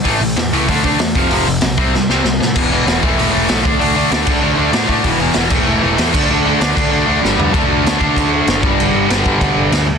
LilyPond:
<<
  \new Staff \with { instrumentName = "Overdriven electric guitar" } { \clef bass \time 4/4 \key d \dorian \tempo 4 = 193 <a, e a>8 <a, e>8 <a, e>8 <a, e a>8 <d a d'>8 <d a d'>8 <d a>8 <f, c f>8 | <f, c f>8 <f, c>8 <f, c>8 <c g c'>8 <c g>8 <c g c'>8 <c g>8 <c g>8 | <e, b, e>8 <e, b, e>8 <e, b, e>8 <a, e a>8 <a, e a>8 <a, e a>8 <a, e a>8 <d a d'>8 | <d a d'>8 <d a d'>8 <d a d'>8 <d a d'>8 <d a d'>8 <d a d'>8 <d a d'>8 <d a d'>8 |
<e, b, e>8 <e, b, e>8 <e, b, e>8 <a, e a>8 <a, e a>8 <a, e a>8 <a, e a>8 <d a d'>8 | <d a d'>8 <d a d'>8 <d a d'>8 <d a d'>8 <d a d'>8 <d a d'>8 <g, d g>8 <g, d g>8 | <d a d'>4. <d a d'>2 <g, d g>8~ | <g, d g>4 <g, d g>2~ <g, d g>8 r8 | }
  \new Staff \with { instrumentName = "Picked electric bass" } { \clef bass \time 4/4 \key d \dorian a,,8 a,,8 e,8 cis,8 d,8 d,8 e,8 f,,8 | f,,8 f,,8 b,,8 c,8 c,8 c,8 c,8 a,8 | e,,4 e,,8 e,,8 e,,8 e,,8 b,,8 d,8 | d,4 d,8 d,8 d,8 d,8 a,8 a,8 |
e,,4 e,,8 e,,8 e,,8 e,,8 e,8 d,8 | d,4 d,8 d,8 d,8 d,8 g,,8 d,8 | d,8 d,8 d,4 d,4 fis,,8 g,,8 | g,,8 g,,8 g,,8 g,,8 d,8 g,,8 d,4 | }
  \new DrumStaff \with { instrumentName = "Drums" } \drummode { \time 4/4 <hho bd>8 hho8 <hho sn>8 hho8 <hho bd>8 <hho bd>8 <hho sn>8 <hho bd>8 | hho8 hho8 <hho sn>8 <hho bd>8 sn8 sn8 sn8 sn8 | <cymc bd>4 <hho sn>8 bd8 hho4 <hho sn>8 bd8 | hho4 <hho sn>8 <cymc bd>8 r4 <hho sn>8 bd8 |
<hho bd>4 <hho sn>8 <cymc bd>8 r4 <hho sn>8 <cymc bd>8 | r4 <hho sn>8 <cymc bd>8 r4 sn8 tomfh8 | <cymc bd>4 <cymc sn>8 bd8 <cymc bd>4 <cymc sn>8 bd8 | cymc4 <cymc sn>8 bd8 <cymc bd>4 <cymc sn>4 | }
>>